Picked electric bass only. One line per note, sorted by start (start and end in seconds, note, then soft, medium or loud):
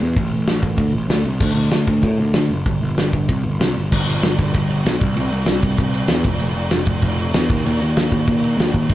0.02 0.16 E2 medium
0.16 0.31 A1 loud
0.34 0.48 A1 medium
0.48 0.77 A1 medium
0.78 0.93 D2 loud
0.93 1.08 A1 medium
1.09 1.24 D2 medium
1.25 1.40 C2 medium
1.40 1.54 D2 medium
1.54 1.70 D2 medium
1.71 1.87 D2 medium
1.87 2.02 D2 medium
2.03 2.18 A2 medium
2.18 2.34 D2 medium
2.35 2.49 D2 medium
2.50 2.65 F#1 loud
2.66 2.81 G1 medium
2.82 2.97 G1 medium
2.97 3.27 G1 medium
3.29 3.43 C2 loud
3.44 3.59 G1 medium
3.60 3.75 C2 medium
3.76 3.91 G1 medium
3.92 4.06 G1 loud
4.08 4.22 G1 medium
4.23 4.37 G1 medium
4.39 4.53 G1 medium
4.55 4.83 G1 medium
4.85 5.00 B1 medium
5.01 5.15 C2 medium
5.16 5.31 C2 loud
5.32 5.46 C2 medium
5.47 5.62 C2 loud
5.63 5.77 C2 loud
5.78 6.07 C2 medium
6.10 6.24 E2 medium
6.25 6.39 F1 medium
6.42 6.55 F1 loud
6.55 6.70 F1 medium
6.71 6.86 F1 medium
6.86 7.01 F1 medium
7.02 7.31 F1 loud
7.35 7.49 E2 medium
7.49 7.64 D#2 loud
7.66 7.80 D#2 loud
7.82 7.96 D#2 medium
7.98 8.11 D#2 medium
8.12 8.26 D#2 medium
8.28 8.56 D#2 medium
8.57 8.72 D#2 loud
8.73 8.88 D#2 loud
8.89 8.94 G1 loud